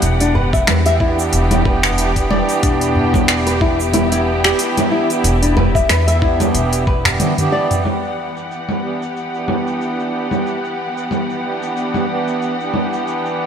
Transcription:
Already playing: harmonium E3 B3 D4 G4, string section E3 B3 G4 F#5
0.02 upright bass E1, open hi-hat, shaker
0.20 nylon-string guitar D4, open hi-hat, shaker
0.35 nylon-string guitar B4, udu
0.53 nylon-string guitar E5, kick, shaker
0.67 upright bass E2, nylon-string guitar B4, finger snap, open hi-hat, low conga, shaker
0.86 nylon-string guitar E5, open hi-hat, shaker
0.99 harmonium E3 B3 D4 G4, nylon-string guitar E4, kick
1.19 shaker
1.33 upright bass E1, open hi-hat, shaker
1.51 open hi-hat, low conga, shaker
1.64 harmonium E3 B3 D4 G4, nylon-string guitar B4, kick
1.83 finger snap, udu, shaker
1.98 open hi-hat, shaker
2.15 harmonium E3 B3 D4 G4, kick, open hi-hat, shaker
2.31 nylon-string guitar D5, low conga
2.49 open hi-hat, shaker
2.63 upright bass E1, nylon-string guitar D4, string section E4, kick, open hi-hat, shaker
2.81 open hi-hat, shaker
2.96 udu
3.14 kick, low conga, shaker
3.28 finger snap, open hi-hat, shaker
3.47 nylon-string guitar B4, open hi-hat, shaker
3.60 harmonium E3 B3 D4 G4, nylon-string guitar E4, kick
3.80 shaker
3.94 nylon-string guitar E4, open hi-hat, low conga, shaker
4.10 harmonium E3 B3 D4, nylon-string guitar E4, open hi-hat, shaker
4.14 harmonium G4
4.44 nylon-string guitar G4, finger snap, shaker
4.59 open hi-hat, shaker
4.77 open hi-hat, low conga, shaker
4.92 nylon-string guitar E4
5.09 harmonium E3 B3 D4 G4, open hi-hat, shaker
5.24 upright bass E1, open hi-hat, shaker
5.42 nylon-string guitar D4, open hi-hat, shaker
5.57 nylon-string guitar B4, udu, low conga
5.75 nylon-string guitar E5, kick, shaker
5.89 upright bass E2, nylon-string guitar B4, finger snap, open hi-hat, shaker
6.08 nylon-string guitar E5, open hi-hat, shaker
6.21 harmonium E3 B3 D4 G4, nylon-string guitar E4, kick
6.40 open hi-hat, low conga, shaker
6.54 upright bass E1, open hi-hat, shaker
6.73 open hi-hat, shaker
6.87 nylon-string guitar B4, kick
7.04 harmonium E3 B3 D4 G4, finger snap, open hi-hat, udu, shaker
7.20 open hi-hat, high tom, low conga, shaker
7.37 harmonium E3 B3 D4 G4, open hi-hat, high tom, udu, shaker
7.52 nylon-string guitar D5
7.71 mid tom, open hi-hat, shaker
7.85 string section E3 B3 G4 F#5, low conga, shaker
8.04 shaker
8.37 shaker
8.51 shaker
8.69 low conga, shaker
8.82 harmonium E3 B3 D4 G4
9.02 shaker
9.17 shaker
9.32 harmonium E3 B3 D4 G4, shaker
9.48 low conga
9.67 shaker
9.81 shaker
10.00 shaker
10.31 harmonium E3 B3 D4 G4, low conga, shaker
10.47 shaker
10.65 shaker
10.97 shaker
11.11 low conga, shaker
11.30 shaker
11.43 harmonium E3 B3 D4 G4
11.63 shaker
11.77 shaker
11.94 low conga, shaker
12.08 harmonium E3 B3 D4 G4
12.28 shaker
12.42 shaker
12.58 harmonium E3 B3 D4 G4, shaker
12.74 low conga
12.93 shaker
13.08 shaker
13.26 shaker

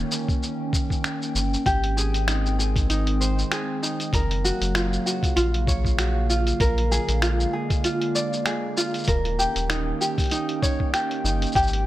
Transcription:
Already playing: ambient pad D#3 A#3 C#4 G5
0.12 cabasa
0.29 kick, cabasa
0.43 cabasa
0.73 kick, cabasa
0.90 kick, cabasa
1.04 finger snap, cabasa
1.22 cabasa
1.35 analog synth bass G1, cabasa
1.54 cabasa
1.66 analog synth bass G#1, ambient pad D#3 G#3 C4, ukulele G4, kick, closed hi-hat, cabasa
1.84 closed hi-hat
1.97 ukulele G#4, cabasa
2.14 closed hi-hat, cabasa
2.28 ukulele D#4, finger snap, closed hi-hat, cabasa
2.46 cabasa
2.59 ukulele G#4, cabasa
2.76 kick, closed hi-hat, cabasa
2.90 ukulele D#4, closed hi-hat, cabasa
3.07 closed hi-hat
3.21 ukulele C5, cabasa
3.39 cabasa
3.52 ukulele G#4, finger snap, closed hi-hat, cabasa
3.83 ukulele D#4, cabasa
4.00 closed hi-hat, cabasa
4.13 analog synth bass F#1, ambient pad C#3 F#3 A#3 F5, ukulele A#4, kick, closed hi-hat, cabasa
4.31 closed hi-hat
4.44 ukulele F#4, cabasa
4.61 analog synth bass F#1, closed hi-hat, cabasa
4.75 ukulele F4, finger snap, closed hi-hat, cabasa
4.93 cabasa
5.06 ukulele F#4, cabasa
5.23 kick, closed hi-hat, cabasa
5.36 analog synth bass A#1, ukulele F4, closed hi-hat, cabasa
5.54 closed hi-hat
5.67 ukulele C#5, kick, cabasa
5.85 kick, cabasa
5.99 ukulele F#4, finger snap, closed hi-hat, cabasa
6.30 ukulele F4, cabasa
6.47 closed hi-hat, cabasa
6.60 analog synth bass A#1, ambient pad D3 G#3, ukulele A#4, kick, closed hi-hat, cabasa
6.78 closed hi-hat
6.92 ukulele G#4, cabasa
7.08 analog synth bass A#1, closed hi-hat, cabasa
7.22 ukulele F4, finger snap, closed hi-hat, cabasa
7.40 cabasa
7.53 ukulele G#4
7.70 kick, closed hi-hat, cabasa
7.84 ukulele F4, closed hi-hat, cabasa
8.02 closed hi-hat
8.15 ukulele D5, cabasa
8.33 cabasa
8.46 ukulele G#4, finger snap, closed hi-hat, cabasa
8.77 ukulele F4, cabasa
8.94 closed hi-hat, cabasa
8.98 cabasa
9.04 analog synth bass D#1, ukulele A#4, kick, closed hi-hat, cabasa
9.08 ambient pad D#3 C#4 G5, cabasa
9.25 closed hi-hat
9.39 ukulele G4, cabasa
9.56 analog synth bass D#1, closed hi-hat, cabasa
9.70 ukulele D#4, finger snap, closed hi-hat, cabasa
10.01 ukulele G4, cabasa
10.18 kick, closed hi-hat, cabasa
10.20 closed hi-hat
10.22 closed hi-hat
10.24 closed hi-hat
10.26 closed hi-hat
10.28 closed hi-hat
10.30 closed hi-hat
10.31 ukulele D#4, closed hi-hat, cabasa
10.49 closed hi-hat
10.62 ukulele C#5, kick, cabasa
10.80 kick
10.93 ukulele G4, finger snap, closed hi-hat, cabasa
11.11 closed hi-hat
11.24 analog synth bass G1, ukulele D#4, cabasa
11.42 closed hi-hat, cabasa
11.46 cabasa
11.52 analog synth bass G#1, ambient pad G#3 C4, ukulele G4, kick, closed hi-hat, cabasa
11.57 cabasa
11.63 cabasa
11.67 cabasa
11.73 closed hi-hat

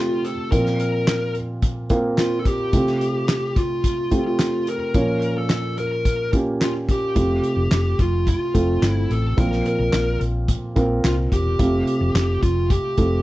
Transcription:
Already playing: felt piano C3 A3 C4 F4 G4, lead electric guitar F4
0.24 lead electric guitar A4, closed hi-hat
0.52 felt piano A#2 F3 A#3 C4 F4 A#4, lead electric guitar A#4, kick, closed hi-hat
0.66 snare
0.80 lead electric guitar A#4, closed hi-hat
1.07 snare, clap, closed hi-hat
1.35 closed hi-hat
1.62 kick, closed hi-hat
1.90 felt piano A#3 C4 F4 A#4, kick, closed hi-hat
2.18 lead electric guitar F4, snare, clap, closed hi-hat
2.39 lead electric guitar A4
2.45 lead electric guitar G4, kick, closed hi-hat
2.73 felt piano C3 A3 C4 F4 G4, kick, closed hi-hat
2.87 snare
3.01 closed hi-hat
3.28 snare, clap, closed hi-hat
3.56 lead electric guitar F4, kick, closed hi-hat
3.84 kick, closed hi-hat
4.11 felt piano A3 C4 F4 G4, kick, closed hi-hat
4.27 lead electric guitar F4
4.39 snare, clap, closed hi-hat
4.67 lead electric guitar A#4, closed hi-hat
4.94 felt piano A#2 F3 A#3 C#4 F4 C#5, kick, closed hi-hat
5.22 closed hi-hat
5.38 lead electric guitar A4
5.49 snare, clap, closed hi-hat
5.78 lead electric guitar A#4, closed hi-hat
6.05 kick, closed hi-hat
6.33 felt piano A#3 C#4 F4 G4, kick, closed hi-hat
6.61 lead electric guitar F4, snare, clap, closed hi-hat
6.89 lead electric guitar G4, kick, closed hi-hat
7.15 fingered electric bass F1, felt piano C3 A3 C4 F4 G4, kick, closed hi-hat
7.43 closed hi-hat
7.56 fingered electric bass F1
7.71 fingered electric bass F1, snare, clap, closed hi-hat
7.99 fingered electric bass F1, lead electric guitar F4, kick, closed hi-hat
8.27 lead electric guitar F4, kick, closed hi-hat
8.54 fingered electric bass F1, felt piano A3 C4 F4 A4, kick, closed hi-hat
8.82 fingered electric bass G1, snare, clap, closed hi-hat
8.87 lead electric guitar E4
9.10 fingered electric bass A1, lead electric guitar A4, closed hi-hat
9.37 fingered electric bass A#1, felt piano A#2 F3 A#3 C4 F4 A#4, lead electric guitar A#4, kick, closed hi-hat
9.52 snare
9.65 lead electric guitar A#4, closed hi-hat
9.79 fingered electric bass A#1
9.93 fingered electric bass A#1, snare, clap, closed hi-hat
10.21 fingered electric bass A#1, closed hi-hat
10.48 kick, closed hi-hat
10.76 fingered electric bass A#1, felt piano A#3 C4 F4 A#4, kick, closed hi-hat
11.04 fingered electric bass C2, lead electric guitar F4, snare, clap, closed hi-hat
11.32 fingered electric bass E1, lead electric guitar G4, kick, closed hi-hat
11.59 fingered electric bass F1, felt piano C3 A3 C4 F4 G4, kick, closed hi-hat
11.87 closed hi-hat
12.01 fingered electric bass F1
12.14 fingered electric bass F1, snare, clap, closed hi-hat
12.42 fingered electric bass F1, lead electric guitar F4, kick, closed hi-hat
12.70 lead electric guitar G4, kick, closed hi-hat
12.97 fingered electric bass F1, felt piano A3 C4 F4 A4, kick, closed hi-hat

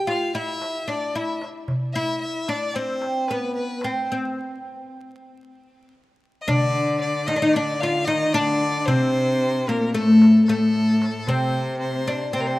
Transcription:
0.07 oud F4, violin F5, darbuka tek
0.35 oud E4, violin E5
0.61 darbuka tek
0.88 oud D4, violin D5, darbuka tek
1.15 oud E4, violin E5
1.41 darbuka tek
1.68 darbuka dum
1.94 oud E4, violin E5
2.21 violin E5
2.48 oud D4, violin D5, darbuka tek
2.75 oud C4, violin C5
3.02 darbuka tek
3.28 oud B3, violin B4, darbuka tek
3.55 violin B4
3.81 oud C4, violin C5, darbuka tek
4.12 oud C4
6.41 violin D#5
6.48 cello D3, oud D4, violin D5, darbuka dum
7.01 violin D5
7.27 cello D#3, oud D#4, violin D#5, darbuka tek
7.36 oud D4
7.42 cello D#3, oud D#4
7.53 cello D3, oud D4, violin D5
7.80 oud F4, violin F5, darbuka tek
8.05 cello D#3, oud D#4, violin D#5, darbuka tek
8.29 cello D#3
8.33 cello D3, oud D4, violin D5
8.85 cello C3, oud C4, violin C5, darbuka dum
9.68 cello A#2, oud A#3, violin A#4, darbuka tek
9.94 cello A2, oud A3, violin A4
10.22 darbuka tek
10.46 cello A2, oud A3, violin A4, darbuka tek
10.74 darbuka ka
11.02 darbuka tek
11.26 cello C3, oud C4, violin C5, darbuka dum
11.80 violin C5
12.07 oud D4, darbuka tek
12.33 cello C3, oud C4, violin C5
12.41 violin A#4
12.47 violin C5

